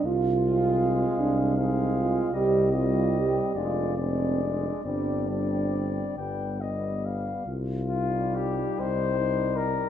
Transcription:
<<
  \new Staff \with { instrumentName = "Flugelhorn" } { \time 6/8 \key c \minor \tempo 4. = 48 r8 f''4. f''4 | ees''8 ees''4 d''8 d''4 | d''8 d''4 g''8 ees''8 f''8 | r8 f'8 g'8 c''4 bes'8 | }
  \new Staff \with { instrumentName = "French horn section" } { \time 6/8 \key c \minor f'4. d'8 ees'8 f'8 | g'8 f'8 g'8 f'8 c'8 d'8 | d'4. r4. | r8 ees'4. ees'4 | }
  \new Staff \with { instrumentName = "Euphonium" } { \time 6/8 \key c \minor r8 c'4. c'4 | c'8 c'4 d'8 d'4 | c'8 c'4 b8 b4 | f'4. ees'4. | }
  \new Staff \with { instrumentName = "Trombone" } { \clef bass \time 6/8 \key c \minor r8 aes4. aes4 | g8 g4 aes8 aes4 | g8 g4 g8 g4 | r8 g4. g4 | }
  \new Staff \with { instrumentName = "Tuba" } { \clef bass \time 6/8 \key c \minor c,4. c,4. | c,4. f,,4. | g,,4. g,,4. | c,4. c,4. | }
>>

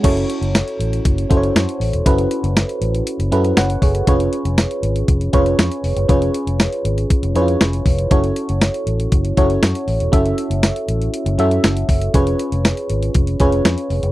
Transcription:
<<
  \new Staff \with { instrumentName = "FM electric piano" } { \time 4/4 \key fis \minor \tempo 4 = 119 << { r1 | r2. <cis'' fis''>8 <gis' cis''>8~ | <gis' cis''>8 r2. r8 | r1 |
r1 | r1 | r1 | } \\ { <cis' e' fis' a' cis''>2 r8 <cis' e' fis' a' bis' cis''>4. | <cis' e' fis' a' b'>2 r8 <cis' e' fis' a' b'>4. | <cis' eis' gis' b' cis''>2 r8 <cis' eis' gis' b' cis''>4. | <cis' eis' gis' b' cis''>2 r8 <cis' e' eis' gis' b' cis''>4. |
<cis' e' fis' a' cis''>2 r8 <cis' e' fis' a' cis''>4. | <cis' e' fis' a' e''>2 r8 <cis' e' fis' a' e''>4. | <cis' eis' gis' b' cis''>2 r8 <cis' eis' gis' b' cis''>4. | } >> }
  \new Staff \with { instrumentName = "Fingered electric bass" } { \clef bass \time 4/4 \key fis \minor fis,,8 r16 fis,,8 r16 a,,8 fis,,8 fis,,8 fis,16 r16 a,,16 e,,16 | fis,,8 r16 fis,,8 r16 a,,8 r16 fis,,16 fis,8 fis,,8 fis,,8 | eis,,8 r16 eis,,8 r16 gis,,8 eis,,8 eis,,8 eis,16 r16 eis,,16 fis,,16 | eis,,8 r16 eis,,8 r16 gis,,8 r16 eis,,16 eis,8 eis,,8 eis,,8 |
fis,,8 r16 fis,,8 r16 a,,8 fis,,8 fis,,8 fis,16 r16 a,,16 e,,16 | fis,,8 r16 fis,,8 r16 a,,8 r16 fis,,16 fis,8 fis,,8 fis,,8 | eis,,8 r16 eis,,8 r16 gis,,8 eis,,8 eis,,8 eis,16 r16 eis,,16 eis,,16 | }
  \new DrumStaff \with { instrumentName = "Drums" } \drummode { \time 4/4 <cymc hh bd>16 hh16 hh16 hh16 <hh sn tamb>16 hh16 hh16 hh16 <hh bd>16 hh16 <hh bd>16 hh16 <hh sn tamb>16 hh16 hho16 hh16 | <hh bd>16 hh16 hh16 hh16 <hh sn tamb>16 hh16 hh16 hh16 hh16 hh16 hh16 hh16 <hh sn tamb>16 hh16 <hho bd>16 hh16 | <hh bd>16 hh16 hh16 hh16 <hh sn tamb>16 hh16 hh16 hh16 <hh bd>16 hh16 <hh bd>16 hh16 <hh sn tamb>16 hh16 hho16 hh16 | <hh bd>16 hh16 hh16 hh16 <hh sn tamb>16 hh16 hh16 hh16 <hh bd>16 hh16 hh16 hh16 <hh sn tamb>16 hh16 <hho bd>16 hh16 |
<hh bd>16 hh16 hh16 hh16 <hh sn tamb>16 hh16 hh16 hh16 <hh bd>16 hh16 <hh bd>16 hh16 <hh sn tamb>16 hh16 hho16 hh16 | <hh bd>16 hh16 hh16 hh16 <hh sn tamb>16 hh16 hh16 hh16 hh16 hh16 hh16 hh16 <hh sn tamb>16 hh16 <hho bd>16 hh16 | <hh bd>16 hh16 hh16 hh16 <hh sn tamb>16 hh16 hh16 hh16 <hh bd>16 hh16 <hh bd>16 hh16 <hh sn tamb>16 hh16 hho16 hh16 | }
>>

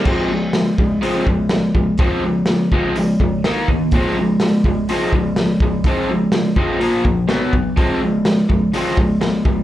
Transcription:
<<
  \new Staff \with { instrumentName = "Overdriven electric guitar" } { \clef bass \time 4/4 \key f \minor \tempo 4 = 124 <f aes c'>8 <f aes>8 <f aes>8 <f aes>8 <f aes c'>8 <f aes>8 <f aes>8 <f aes>8 | <f aes c'>8 <f aes>8 <f aes>8 <f aes c'>8 <f aes>8 <f aes>8 <ees bes ees'>8 <ees bes>8 | <f aes c'>8 <f aes>8 <f aes>8 <f aes>8 <f aes c'>8 <f aes>8 <f aes>8 <f aes>8 | <f aes c'>8 <f aes>8 <f aes>8 <f aes c'>8 <bes, f bes>8 <bes, f>8 <b, fis b>8 <b, fis>8 |
<f aes c'>8 <f aes>8 <f aes>8 <f aes>8 <f aes c'>8 <f aes>8 <f aes>8 <f aes>8 | }
  \new DrumStaff \with { instrumentName = "Drums" } \drummode { \time 4/4 <cymc bd>4 <hho sn>8 bd8 hho8 bd8 <hho sn>8 bd8 | <hho bd>4 <hho sn>8 bd8 hho8 bd8 <hho sn>8 bd8 | <hho bd>4 <hho sn>8 bd8 hho8 bd8 <hho sn>8 bd8 | <hho bd>4 <hho sn>8 bd8 hho8 bd8 <hho sn>8 bd8 |
<hho bd>4 <hho sn>8 bd8 hho8 bd8 <hho sn>8 bd8 | }
>>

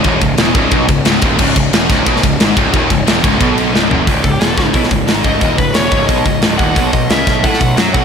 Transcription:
<<
  \new Staff \with { instrumentName = "Lead electric guitar" } { \time 4/4 \key cis \minor \tempo 4 = 178 r1 | r1 | r1 | r8 a'16 g'16 gis'16 a'16 fis'16 dis'16 e'8 r4 dis''8~ |
dis''8 b'8 cis''4 dis''4 r8 fis''8~ | fis''8 dis''8 e''4 fis''4 r8 fis''8 | }
  \new Staff \with { instrumentName = "Distorted electric guitar" } { \clef bass \time 4/4 \key cis \minor dis,8 cis,8 e,8 cis,8 b,8 cis,8 cis,8 dis,8 | cis,8 cis,8 e,8 cis,8 b,8 cis,8 gis,8 cis,8 | dis,8 cis,8 e,8 cis,8 b,4 cis,8 fis,8 | cis,8 cis,8 e,8 cis,8 b,8 cis,8 gis,8 cis,8 |
dis,8 cis,8 e,8 cis,8 b,8 cis,8 cis,8 dis,8 | b,8 b,8 cis8 b,8 a8 b,8 fis8 b,8 | }
  \new Staff \with { instrumentName = "Distorted electric guitar" } { \clef bass \time 4/4 \key cis \minor dis,8 cis,8 e,8 cis,8 b,8 cis,8 cis,8 dis,8 | cis,8 cis,8 e,8 cis,8 b,8 cis,8 gis,8 cis,8 | dis,8 cis,8 e,8 cis,8 b,4 cis,8 fis,8 | cis,8 cis,8 e,8 cis,8 b,8 cis,8 gis,8 cis,8 |
dis,8 cis,8 e,8 cis,8 b,8 cis,8 cis,8 dis,8 | b,8 b,8 cis8 b,8 a8 b,8 fis8 b,8 | }
  \new Staff \with { instrumentName = "Distorted electric guitar" } { \clef bass \time 4/4 \key cis \minor dis,8 cis,8 e,8 cis,8 b,8 cis,8 cis,8 dis,8 | cis,8 cis,8 e,8 cis,8 b,8 cis,8 gis,8 cis,8 | dis,8 cis,8 e,8 cis,8 b,4 cis,8 fis,8 | r1 |
r1 | r1 | }
  \new Staff \with { instrumentName = "Picked electric bass" } { \clef bass \time 4/4 \key cis \minor dis,,8 cis,,8 e,,8 cis,,8 b,,8 cis,,8 cis,,8 dis,,8 | cis,,8 cis,,8 e,,8 cis,,8 b,,8 cis,,8 gis,,8 cis,,8 | dis,,8 cis,,8 e,,8 cis,,8 b,,4 cis,,8 fis,,8 | cis,,8 cis,,8 e,,8 cis,,8 b,,8 cis,,8 gis,,8 cis,,8 |
dis,,8 cis,,8 e,,8 cis,,8 b,,8 cis,,8 cis,,8 dis,,8 | b,,8 b,,8 cis,8 b,,8 a,8 b,,8 fis,8 b,,8 | }
  \new DrumStaff \with { instrumentName = "Drums" } \drummode { \time 4/4 <bd cymr>8 <bd cymr>8 <cymr sn>8 <bd cymr>8 <bd cymr>8 <bd cymr>8 <cymr sn>8 <bd cymr>8 | <cymc bd>8 <bd cymr>8 <cymr sn>8 <bd cymr sn>8 <bd cymr>16 sn16 <bd cymr>8 <cymr sn>8 <bd cymr>8 | <bd cymr>8 <bd cymr>8 <cymr sn>8 <bd cymr>8 <bd cymr>8 cymr8 sn8 tomfh8 | <hho bd>8 <hho bd>8 <hho sn>8 <hho bd sn>8 <hho bd>16 sn16 <hho bd>8 <hho sn>8 <hho bd>8 |
<hho bd>8 <hho bd>8 <hho sn>8 <hho bd>8 <hho bd>8 <hho bd>8 <hho sn>8 <hho bd>8 | <hho bd>8 <hho bd>8 <hho sn>8 <hho bd sn>8 <hho bd>16 sn16 <hho bd>8 <hho sn>8 <hho bd>8 | }
>>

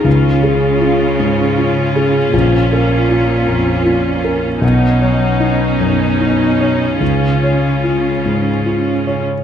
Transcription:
<<
  \new Staff \with { instrumentName = "Grand piano" } { \time 6/8 \key des \mixolydian \tempo 4. = 51 des,8 aes'8 f'8 aes,8 f'8 aes'8 | bes,,8 bes'8 f'8 f,8 f'8 bes'8 | b,,8 cis''8 dis'8 fis,8 dis'8 cis''8 | des,8 des''8 f'8 aes,8 f'8 des''8 | }
  \new Staff \with { instrumentName = "Viola section" } { \time 6/8 \key des \mixolydian << { f'2.~ | f'2. | dis'2. | f'2~ f'8. r16 | } \\ { des'2.~ | des'2. | cis'2.~ | cis'2~ cis'8. r16 | } >> }
  \new Staff \with { instrumentName = "Harp" } { \time 6/8 \key des \mixolydian <des aes'>8 aes8 f'8 aes'8 f'8 des'8 | bes,8 f8 f'8 bes'8 f'8 des'8 | b,8 fis8 dis'8 cis''8 dis'8 cis'8 | des8 aes8 aes'8 des''4 des'8 | }
  \new Staff \with { instrumentName = "Cello section" } { \clef bass \time 6/8 \key des \mixolydian des2. | bes,2. | b,2. | des2~ des8. r16 | }
>>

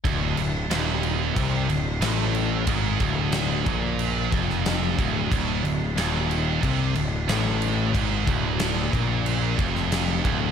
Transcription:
<<
  \new Staff \with { instrumentName = "Distorted electric guitar" } { \clef bass \time 4/4 \key d \minor \tempo 4 = 91 d,8 d,8 ees,4 c8 d,8 a,4 | gis,8 d,4 bes,4 f,4 d,8 | d,8 d,8 ees,4 c8 d,8 a,4 | gis,8 d,4 bes,4 f,4 d,8 | }
  \new Staff \with { instrumentName = "Distorted electric guitar" } { \clef bass \time 4/4 \key d \minor d,8 d,8 ees,4 c8 d,8 a,4 | gis,8 d,4 bes,4 f,4 d,8 | d,8 d,8 ees,4 c8 d,8 a,4 | gis,8 d,4 bes,4 f,4 d,8 | }
  \new Staff \with { instrumentName = "Picked electric bass" } { \clef bass \time 4/4 \key d \minor d,,8 d,,8 ees,,4 c,8 d,,8 a,,4 | gis,,8 d,,4 bes,,4 f,,4 d,,8 | d,,8 d,,8 ees,,4 c,8 d,,8 a,,4 | gis,,8 d,,4 bes,,4 f,,4 d,,8 | }
  \new DrumStaff \with { instrumentName = "Drums" } \drummode { \time 4/4 <cymc bd>8 cymc8 <cymc sn>8 cymc8 <cymc bd>8 cymc8 <cymc sn>8 cymc8 | <cymc bd>8 <cymc bd>8 <cymc sn>8 <cymc bd>8 cymc8 <cymc bd>16 sn16 <cymc sn>8 <cymc bd>8 | <cymc bd>8 cymc8 <cymc sn>8 cymc8 <cymc bd>8 cymc8 <cymc sn>8 cymc8 | <cymc bd>8 <cymc bd>8 <cymc sn>8 <cymc bd>8 cymc8 <cymc bd>16 sn16 <cymc sn>8 <cymc bd>8 | }
>>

